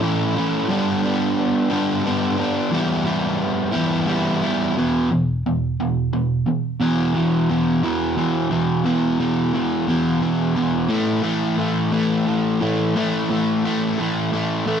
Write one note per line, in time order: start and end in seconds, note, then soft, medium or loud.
0.00 0.36 A2 medium
0.00 0.67 E3 medium
0.00 0.38 A3 medium
0.00 0.37 C#4 medium
0.00 0.35 E4 medium
0.36 0.69 A3 medium
0.36 0.69 C#4 medium
0.36 0.68 E4 medium
0.68 1.36 G2 loud
0.68 1.37 D3 loud
0.68 1.05 G3 loud
0.68 1.04 B3 loud
0.68 1.01 D4 loud
1.03 1.70 G3 medium
1.03 1.69 B3 medium
1.03 1.68 D4 medium
1.70 2.40 G2 medium
1.70 2.03 D3 medium
1.70 2.04 G3 medium
1.70 2.05 B3 loud
1.70 2.05 D4 loud
2.04 2.70 D3 medium
2.04 2.39 G3 medium
2.04 2.38 B3 medium
2.04 2.35 D4 medium
2.37 2.72 G3 medium
2.37 2.73 B3 medium
2.37 2.70 D4 medium
2.71 3.40 E3 loud
2.71 3.06 G3 loud
2.71 3.05 B3 loud
2.71 3.03 E4 loud
3.05 3.74 G3 medium
3.05 3.73 B3 medium
3.05 3.71 E4 medium
3.72 4.05 E3 medium
3.72 4.06 G3 medium
3.72 4.07 B3 medium
3.72 4.08 E4 medium
4.07 4.74 E3 medium
4.07 4.44 G3 medium
4.07 4.43 B3 medium
4.07 4.41 E4 medium
4.42 4.76 G3 medium
4.42 4.75 B3 medium
4.42 4.75 E4 medium
4.77 5.09 E2 medium
4.77 5.09 B2 medium
4.77 5.10 E3 medium
5.12 5.42 E2 medium
5.12 5.42 B2 medium
5.46 5.76 E2 medium
5.46 5.76 B2 medium
5.80 6.10 E2 medium
5.80 6.10 B2 medium
6.13 6.44 E2 medium
6.13 6.44 B2 medium
6.46 6.78 E2 medium
6.46 6.78 B2 medium
6.80 7.14 E2 medium
6.80 7.14 B2 medium
6.80 7.16 E3 medium
7.15 7.49 E2 medium
7.15 7.48 B2 medium
7.15 7.50 E3 medium
7.49 7.81 E2 medium
7.49 7.82 B2 medium
7.49 7.83 E3 medium
7.82 8.16 E2 medium
7.82 8.16 B2 medium
7.82 8.17 E3 medium
8.17 8.49 E2 medium
8.17 8.50 B2 medium
8.17 8.51 E3 medium
8.50 8.83 E2 medium
8.50 8.85 B2 medium
8.50 8.86 E3 medium
8.85 9.18 E2 medium
8.85 9.19 B2 medium
8.85 9.20 E3 medium
9.20 9.52 E2 medium
9.20 9.53 B2 medium
9.20 9.54 E3 medium
9.53 9.86 E2 medium
9.53 9.87 B2 medium
9.53 9.89 E3 medium
9.87 10.20 E2 medium
9.87 10.21 B2 medium
9.87 10.22 E3 medium
10.21 10.54 E2 medium
10.21 10.55 B2 medium
10.21 10.56 E3 medium
10.55 10.88 E2 medium
10.55 10.88 B2 medium
10.55 10.89 E3 medium
10.89 11.22 A2 loud
10.89 11.23 E3 medium
10.89 11.23 A3 loud
11.22 11.57 A2 medium
11.22 11.58 E3 medium
11.22 11.58 A3 medium
11.57 11.91 A2 medium
11.57 11.92 E3 medium
11.57 11.93 A3 medium
11.92 12.25 A2 medium
11.92 12.26 E3 medium
11.92 12.27 A3 medium
12.26 12.59 A2 medium
12.26 12.61 E3 medium
12.26 12.62 A3 medium
12.60 12.94 A2 medium
12.60 12.96 E3 medium
12.60 12.97 A3 medium
12.95 13.28 A2 medium
12.95 13.30 E3 medium
12.95 13.30 A3 medium
13.29 13.63 A2 medium
13.29 13.65 E3 medium
13.29 13.65 A3 medium
13.64 13.98 A2 medium
13.64 13.99 E3 medium
13.64 14.00 A3 medium
13.99 14.31 A2 medium
13.99 14.33 E3 medium
13.99 14.33 A3 medium
14.32 14.65 A2 medium
14.32 14.67 E3 medium
14.32 14.67 A3 medium
14.66 14.80 A2 medium
14.66 14.80 E3 medium
14.66 14.80 A3 medium